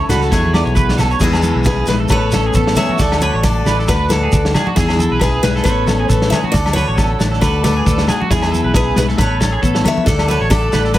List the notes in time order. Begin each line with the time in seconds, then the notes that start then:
Already playing: E3 C#4 E4
0.09 C#2 F#4 A4 B4, snare, high conga, low conga, shekere
0.21 A4, snare, shekere
0.30 E2 E3 B3 E4 F#4 G#4 C#5, muted clean electric guitar stroke, kick, snare, low agogo, shekere
0.44 high conga
0.53 B3 D5, snare, high conga, low agogo
0.65 B1 C#5, shekere
0.74 E3 F#4 B4, kick, shekere
0.89 snare
0.97 A4, snare, high conga, low conga, low agogo, shekere
1.10 C#5, shekere
1.19 E2 E3 G#3 B3 E4 G#4 B4 E5, kick, snare, crash, shekere
1.24 G#4
1.33 snare, low agogo
1.42 B3 A4, high conga, shekere
1.55 B1, muted clean electric guitar stroke
1.64 F#2 G#4 B4, kick, snare, low agogo, shekere
1.86 A#1 G#2 G#4 B4, snare, low conga, shekere
2.00 A4
2.08 A1 A2 A4 B4 C#5 A5, kick, snare, low agogo, shekere
2.31 C#4 A4, snare, high conga, low conga, low agogo, shekere
2.46 G#4
2.54 A1 B3 A4, kick, snare, shekere
2.67 snare
2.75 E3 G#4 C#5 E5, snare, high conga, low conga, low agogo, shekere
2.89 F#4, high conga
2.98 D2 D3 A3 D4 F#4 A4 D5 F#5, kick, snare, shekere
3.12 snare, low agogo
3.20 F#4 A4 B4 C#5, high conga, shekere
3.33 A1 C#5
3.43 D4 A4 D5, kick, snare, low agogo, shekere
3.65 A1 A3 B4, snare, low conga, shekere
3.79 A4, snare
3.88 D2 F#4 B4, kick, snare, low agogo, shekere
4.09 A2 F#4 A4, snare, high conga, low conga, low agogo, shekere
4.23 G#4
4.32 D2 D4, kick, snare, shekere
4.45 snare
4.54 F#4 G#4, snare, high conga, low conga, low agogo, shekere
4.67 F#4, high conga
4.75 E2 E4 G#4 E5 G#5 B5, kick, snare, shekere
4.89 snare, low agogo
4.99 A4, muted clean electric guitar stroke, high conga, shekere
5.11 B1 B4
5.20 F#2 G#4 B4, kick, snare, low agogo, shekere
5.43 B1 G#2 G#4 B4, snare, low conga, shekere
5.56 A4, snare
5.64 A1 A2 E3 B3 C#4 A4 B4 C#5 A5, kick, snare, low agogo, shekere
5.68 E4
5.87 C#4 A4, snare, high conga, low conga, low agogo, shekere
6.00 G#4
6.09 A1 A4 B4, kick, snare, shekere
6.22 snare
6.30 E3 G#4 C#5 E5, snare, high conga, low conga, low agogo, shekere
6.44 F#4, high conga
6.52 D2 D3 D4 A4 D5, muted clean electric guitar stroke, kick, snare, shekere
6.56 F#5
6.66 snare, high conga, low agogo
6.73 F#4 A4 B4 C#5, high conga, low conga, shekere
6.88 A1 C#5
6.96 B3 A4, kick, snare, low agogo, shekere
7.19 A1 A3, snare, low conga, shekere
7.32 A4, snare
7.41 D2 F#4 A4 B4 D5, kick, snare, low agogo, shekere
7.63 A2 A4 B4 D5, snare, high conga, low conga, low agogo, shekere
7.77 G#4
7.86 D2 D4 A4, kick, snare, shekere
7.98 snare
8.08 F#4 G#4, snare, high conga, low conga, low agogo, shekere
8.21 F#4, high conga
8.29 E2 E4 G#4 E5 G#5 B5, kick, snare, shekere
8.42 snare, low agogo
8.52 B3 A4, high conga, shekere
8.64 B1 B4
8.74 F#2 G#4 B4, kick, snare, low agogo, shekere
8.96 B1 G#2 G#4 B4, snare, low conga, shekere
9.08 A4, snare
9.18 A1 A4 B4 C#5 A5, muted clean electric guitar stroke, kick, snare, low agogo, shekere
9.40 A4, snare, high conga, low conga, low agogo, shekere
9.52 G#4
9.62 A1 B3 A4, kick, shekere
9.75 snare
9.84 E3 C#5 E5, snare, high conga, low conga, low agogo, shekere
9.96 muted clean electric guitar stroke, high conga
10.04 D2 D3 A4 D5 F#5, kick, snare, shekere
10.08 D5
10.19 snare, low agogo
10.28 F#4 A4 B4 C#5, high conga, shekere
10.40 A1 C#5
10.50 D4 A4 D5, kick, snare, low agogo, shekere
10.72 A1 A3 B4, snare, low conga, shekere
10.84 A4, snare
10.94 D2 F#4 B4, kick, snare, low agogo, shekere